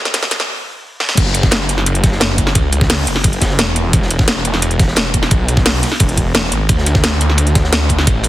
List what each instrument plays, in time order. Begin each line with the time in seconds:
Already playing: detuned saw bass B1
0.05 snare, closed hi-hat
0.14 detuned saw bass F#2, snare, closed hi-hat, open hi-hat
0.23 snare
0.31 snare, closed hi-hat, ride
0.40 snare
1.00 snare
1.09 snare
1.17 detuned saw bass F#1, kick, closed hi-hat, crash, ride
1.26 snare
1.34 closed hi-hat, ride
1.43 kick, snare
1.51 snare, closed hi-hat, ride
1.60 snare
1.69 snare, closed hi-hat, ride
1.78 snare
1.86 closed hi-hat, ride
1.95 closed hi-hat
2.04 kick, snare, closed hi-hat, ride
2.12 snare
2.20 snare, closed hi-hat, ride
2.29 snare
2.38 kick, closed hi-hat, ride
2.47 snare
2.55 detuned saw bass C#2, kick, closed hi-hat, ride
2.72 closed hi-hat, ride
2.81 kick, snare
2.90 snare, closed hi-hat, open hi-hat
3.07 detuned saw bass F#1, closed hi-hat, ride
3.16 snare
3.24 kick, closed hi-hat, ride
3.33 closed hi-hat
3.42 kick, snare, closed hi-hat, ride
3.50 snare
3.59 detuned saw bass E1, snare, closed hi-hat, ride
3.76 closed hi-hat, ride
3.93 detuned saw bass E1, kick, closed hi-hat, ride
4.03 snare
4.11 closed hi-hat, ride
4.19 kick, snare
4.28 snare, closed hi-hat, ride
4.37 snare
4.45 closed hi-hat, ride
4.53 snare
4.62 closed hi-hat, ride
4.71 closed hi-hat
4.79 kick, snare, closed hi-hat, ride
4.88 snare
4.96 snare, closed hi-hat, ride
5.05 snare
5.14 kick, closed hi-hat, ride
5.22 snare
5.31 detuned saw bass B1, kick, closed hi-hat, ride
5.48 closed hi-hat, ride
5.57 kick, snare
5.66 snare, closed hi-hat, open hi-hat
5.82 snare, closed hi-hat, ride
5.92 snare
6.00 detuned saw bass E1, kick, closed hi-hat, ride
6.09 closed hi-hat
6.17 kick, closed hi-hat
6.34 snare, closed hi-hat, ride
6.44 snare
6.52 detuned saw bass G#1, closed hi-hat, ride
6.69 detuned saw bass D2, kick, closed hi-hat, ride
6.78 snare
6.86 closed hi-hat, ride
6.95 kick, snare
7.04 snare, closed hi-hat, ride
7.12 snare
7.21 closed hi-hat, ride
7.30 snare
7.38 closed hi-hat, ride
7.47 closed hi-hat
7.55 kick, snare, closed hi-hat, ride
7.64 snare
7.72 snare, closed hi-hat, ride
7.81 snare
7.89 kick, closed hi-hat, ride
7.99 snare
8.07 detuned saw bass A1, kick, closed hi-hat, ride
8.23 closed hi-hat, ride